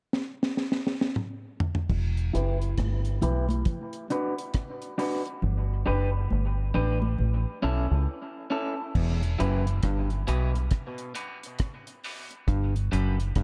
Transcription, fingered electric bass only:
0, 0, Header, 1, 2, 480
1, 0, Start_track
1, 0, Tempo, 882353
1, 1030, Time_signature, 4, 2, 24, 8
1, 7307, End_track
2, 0, Start_track
2, 0, Title_t, "Fingered electric bass"
2, 0, Program_c, 0, 33
2, 1036, Note_on_c, 0, 28, 100
2, 1251, Note_off_c, 0, 28, 0
2, 1279, Note_on_c, 0, 30, 86
2, 1493, Note_off_c, 0, 30, 0
2, 1516, Note_on_c, 0, 31, 92
2, 1731, Note_off_c, 0, 31, 0
2, 1758, Note_on_c, 0, 35, 86
2, 1972, Note_off_c, 0, 35, 0
2, 2956, Note_on_c, 0, 31, 96
2, 3171, Note_off_c, 0, 31, 0
2, 3198, Note_on_c, 0, 30, 95
2, 3412, Note_off_c, 0, 30, 0
2, 3438, Note_on_c, 0, 31, 89
2, 3652, Note_off_c, 0, 31, 0
2, 3679, Note_on_c, 0, 33, 91
2, 3893, Note_off_c, 0, 33, 0
2, 3917, Note_on_c, 0, 33, 89
2, 4049, Note_off_c, 0, 33, 0
2, 4157, Note_on_c, 0, 35, 79
2, 4289, Note_off_c, 0, 35, 0
2, 4305, Note_on_c, 0, 37, 95
2, 4384, Note_off_c, 0, 37, 0
2, 4875, Note_on_c, 0, 28, 94
2, 5090, Note_off_c, 0, 28, 0
2, 5119, Note_on_c, 0, 30, 102
2, 5332, Note_off_c, 0, 30, 0
2, 5353, Note_on_c, 0, 31, 91
2, 5569, Note_off_c, 0, 31, 0
2, 5597, Note_on_c, 0, 35, 85
2, 5811, Note_off_c, 0, 35, 0
2, 6791, Note_on_c, 0, 31, 104
2, 7007, Note_off_c, 0, 31, 0
2, 7035, Note_on_c, 0, 30, 84
2, 7249, Note_off_c, 0, 30, 0
2, 7271, Note_on_c, 0, 31, 90
2, 7307, Note_off_c, 0, 31, 0
2, 7307, End_track
0, 0, End_of_file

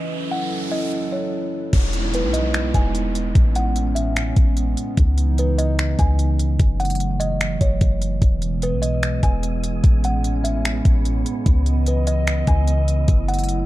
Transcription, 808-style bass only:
0, 0, Header, 1, 2, 480
1, 0, Start_track
1, 0, Tempo, 405405
1, 129, Time_signature, 4, 2, 24, 8
1, 16171, End_track
2, 0, Start_track
2, 0, Title_t, "808-style bass"
2, 0, Program_c, 0, 38
2, 2049, Note_on_c, 0, 28, 105
2, 2648, Note_on_c, 0, 35, 96
2, 2666, Note_off_c, 0, 28, 0
2, 3218, Note_off_c, 0, 35, 0
2, 3249, Note_on_c, 0, 28, 102
2, 3940, Note_off_c, 0, 28, 0
2, 3970, Note_on_c, 0, 33, 113
2, 5122, Note_off_c, 0, 33, 0
2, 5169, Note_on_c, 0, 33, 105
2, 5630, Note_off_c, 0, 33, 0
2, 5890, Note_on_c, 0, 37, 115
2, 7042, Note_off_c, 0, 37, 0
2, 7090, Note_on_c, 0, 37, 101
2, 7781, Note_off_c, 0, 37, 0
2, 7810, Note_on_c, 0, 30, 111
2, 8962, Note_off_c, 0, 30, 0
2, 9010, Note_on_c, 0, 30, 101
2, 9240, Note_off_c, 0, 30, 0
2, 9250, Note_on_c, 0, 30, 107
2, 9710, Note_off_c, 0, 30, 0
2, 9729, Note_on_c, 0, 28, 106
2, 10327, Note_on_c, 0, 35, 96
2, 10345, Note_off_c, 0, 28, 0
2, 10898, Note_off_c, 0, 35, 0
2, 10928, Note_on_c, 0, 28, 102
2, 11620, Note_off_c, 0, 28, 0
2, 11648, Note_on_c, 0, 33, 109
2, 12802, Note_off_c, 0, 33, 0
2, 12849, Note_on_c, 0, 33, 104
2, 13310, Note_off_c, 0, 33, 0
2, 13569, Note_on_c, 0, 37, 112
2, 14722, Note_off_c, 0, 37, 0
2, 14770, Note_on_c, 0, 37, 104
2, 15461, Note_off_c, 0, 37, 0
2, 15489, Note_on_c, 0, 30, 115
2, 16171, Note_off_c, 0, 30, 0
2, 16171, End_track
0, 0, End_of_file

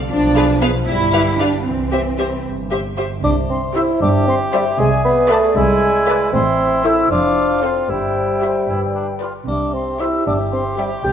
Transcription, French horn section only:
0, 0, Header, 1, 2, 480
1, 0, Start_track
1, 0, Key_signature, 0, "major"
1, 0, Tempo, 523104
1, 91, Time_signature, 6, 3, 24, 8
1, 3452, Tempo, 515464
1, 6812, Tempo, 524934
1, 10245, End_track
2, 0, Start_track
2, 0, Title_t, "French horn section"
2, 0, Program_c, 0, 60
2, 0, Note_on_c, 0, 50, 52
2, 86, Note_on_c, 0, 53, 69
2, 96, Note_off_c, 0, 50, 0
2, 785, Note_off_c, 0, 53, 0
2, 815, Note_on_c, 0, 55, 69
2, 1515, Note_off_c, 0, 55, 0
2, 1520, Note_on_c, 0, 52, 48
2, 2587, Note_off_c, 0, 52, 0
2, 2962, Note_on_c, 0, 72, 63
2, 2964, Note_on_c, 0, 76, 62
2, 4371, Note_off_c, 0, 72, 0
2, 4418, Note_on_c, 0, 74, 72
2, 5807, Note_off_c, 0, 76, 0
2, 5848, Note_on_c, 0, 72, 63
2, 5850, Note_off_c, 0, 74, 0
2, 5850, Note_on_c, 0, 76, 64
2, 6554, Note_off_c, 0, 76, 0
2, 6571, Note_on_c, 0, 77, 58
2, 7278, Note_off_c, 0, 77, 0
2, 7300, Note_on_c, 0, 76, 43
2, 7979, Note_off_c, 0, 72, 0
2, 8006, Note_off_c, 0, 76, 0
2, 8018, Note_on_c, 0, 71, 44
2, 8020, Note_on_c, 0, 74, 43
2, 8500, Note_off_c, 0, 71, 0
2, 8500, Note_off_c, 0, 74, 0
2, 8746, Note_on_c, 0, 76, 50
2, 8749, Note_on_c, 0, 67, 48
2, 10138, Note_off_c, 0, 76, 0
2, 10140, Note_off_c, 0, 67, 0
2, 10183, Note_on_c, 0, 74, 44
2, 10187, Note_on_c, 0, 69, 50
2, 10245, Note_off_c, 0, 69, 0
2, 10245, Note_off_c, 0, 74, 0
2, 10245, End_track
0, 0, End_of_file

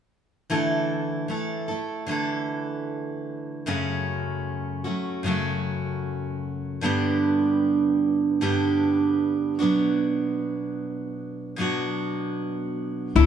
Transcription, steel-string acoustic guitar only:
0, 0, Header, 1, 2, 480
1, 0, Start_track
1, 0, Key_signature, 2, "major"
1, 0, Tempo, 790514
1, 304, Time_signature, 4, 2, 24, 8
1, 8052, End_track
2, 0, Start_track
2, 0, Title_t, "Steel-string acoustic guitar"
2, 0, Program_c, 0, 25
2, 302, Note_on_c, 0, 50, 72
2, 305, Note_on_c, 0, 52, 68
2, 309, Note_on_c, 0, 57, 65
2, 311, Note_on_c, 0, 64, 76
2, 313, Note_on_c, 0, 69, 77
2, 772, Note_off_c, 0, 52, 0
2, 779, Note_on_c, 0, 52, 45
2, 783, Note_off_c, 0, 50, 0
2, 783, Note_off_c, 0, 64, 0
2, 785, Note_off_c, 0, 57, 0
2, 787, Note_on_c, 0, 57, 52
2, 790, Note_on_c, 0, 64, 48
2, 794, Note_off_c, 0, 69, 0
2, 797, Note_on_c, 0, 69, 52
2, 1013, Note_off_c, 0, 69, 0
2, 1020, Note_on_c, 0, 69, 39
2, 1022, Note_off_c, 0, 52, 0
2, 1024, Note_off_c, 0, 64, 0
2, 1026, Note_off_c, 0, 57, 0
2, 1031, Note_on_c, 0, 64, 35
2, 1038, Note_on_c, 0, 57, 32
2, 1254, Note_on_c, 0, 50, 66
2, 1262, Note_off_c, 0, 57, 0
2, 1262, Note_off_c, 0, 69, 0
2, 1262, Note_on_c, 0, 52, 66
2, 1266, Note_off_c, 0, 64, 0
2, 1269, Note_on_c, 0, 57, 62
2, 1273, Note_on_c, 0, 64, 59
2, 1281, Note_on_c, 0, 69, 66
2, 2220, Note_off_c, 0, 50, 0
2, 2223, Note_on_c, 0, 42, 60
2, 2224, Note_off_c, 0, 52, 0
2, 2227, Note_on_c, 0, 49, 75
2, 2228, Note_off_c, 0, 57, 0
2, 2228, Note_on_c, 0, 54, 70
2, 2230, Note_off_c, 0, 64, 0
2, 2231, Note_on_c, 0, 57, 73
2, 2234, Note_on_c, 0, 61, 68
2, 2235, Note_off_c, 0, 69, 0
2, 2237, Note_on_c, 0, 66, 74
2, 2933, Note_off_c, 0, 66, 0
2, 2939, Note_off_c, 0, 61, 0
2, 2940, Note_on_c, 0, 66, 36
2, 2944, Note_off_c, 0, 42, 0
2, 2946, Note_off_c, 0, 49, 0
2, 2946, Note_off_c, 0, 57, 0
2, 2946, Note_on_c, 0, 61, 43
2, 2947, Note_off_c, 0, 54, 0
2, 2953, Note_on_c, 0, 57, 34
2, 2957, Note_on_c, 0, 54, 34
2, 3176, Note_on_c, 0, 42, 66
2, 3183, Note_off_c, 0, 66, 0
2, 3183, Note_on_c, 0, 49, 58
2, 3184, Note_off_c, 0, 54, 0
2, 3186, Note_off_c, 0, 61, 0
2, 3187, Note_off_c, 0, 57, 0
2, 3191, Note_on_c, 0, 54, 70
2, 3195, Note_on_c, 0, 57, 59
2, 3200, Note_on_c, 0, 61, 65
2, 3204, Note_on_c, 0, 66, 71
2, 4135, Note_off_c, 0, 42, 0
2, 4137, Note_on_c, 0, 43, 70
2, 4141, Note_off_c, 0, 49, 0
2, 4144, Note_on_c, 0, 50, 76
2, 4146, Note_off_c, 0, 54, 0
2, 4148, Note_on_c, 0, 55, 75
2, 4150, Note_off_c, 0, 57, 0
2, 4153, Note_off_c, 0, 61, 0
2, 4155, Note_off_c, 0, 66, 0
2, 4155, Note_on_c, 0, 59, 75
2, 4160, Note_on_c, 0, 62, 63
2, 4163, Note_on_c, 0, 67, 80
2, 5099, Note_off_c, 0, 43, 0
2, 5104, Note_off_c, 0, 55, 0
2, 5106, Note_off_c, 0, 50, 0
2, 5106, Note_on_c, 0, 43, 66
2, 5108, Note_on_c, 0, 50, 62
2, 5111, Note_off_c, 0, 59, 0
2, 5111, Note_on_c, 0, 55, 62
2, 5112, Note_off_c, 0, 67, 0
2, 5113, Note_off_c, 0, 62, 0
2, 5113, Note_on_c, 0, 59, 62
2, 5115, Note_on_c, 0, 62, 73
2, 5119, Note_on_c, 0, 67, 76
2, 5819, Note_off_c, 0, 67, 0
2, 5821, Note_on_c, 0, 66, 60
2, 5826, Note_off_c, 0, 62, 0
2, 5827, Note_off_c, 0, 43, 0
2, 5829, Note_off_c, 0, 55, 0
2, 5829, Note_on_c, 0, 62, 60
2, 5834, Note_off_c, 0, 59, 0
2, 5836, Note_on_c, 0, 59, 52
2, 5842, Note_on_c, 0, 54, 53
2, 5845, Note_off_c, 0, 50, 0
2, 5847, Note_on_c, 0, 47, 50
2, 7014, Note_off_c, 0, 47, 0
2, 7022, Note_on_c, 0, 47, 67
2, 7024, Note_off_c, 0, 54, 0
2, 7025, Note_off_c, 0, 66, 0
2, 7031, Note_on_c, 0, 54, 69
2, 7033, Note_off_c, 0, 59, 0
2, 7039, Note_on_c, 0, 59, 66
2, 7042, Note_off_c, 0, 62, 0
2, 7045, Note_on_c, 0, 62, 73
2, 7050, Note_on_c, 0, 66, 71
2, 7986, Note_off_c, 0, 47, 0
2, 7989, Note_off_c, 0, 54, 0
2, 7989, Note_on_c, 0, 50, 70
2, 7992, Note_on_c, 0, 52, 67
2, 7993, Note_off_c, 0, 59, 0
2, 7994, Note_off_c, 0, 62, 0
2, 7995, Note_on_c, 0, 57, 59
2, 7997, Note_off_c, 0, 66, 0
2, 7997, Note_on_c, 0, 62, 61
2, 8000, Note_on_c, 0, 69, 69
2, 8052, Note_off_c, 0, 50, 0
2, 8052, Note_off_c, 0, 52, 0
2, 8052, Note_off_c, 0, 57, 0
2, 8052, Note_off_c, 0, 62, 0
2, 8052, Note_off_c, 0, 69, 0
2, 8052, End_track
0, 0, End_of_file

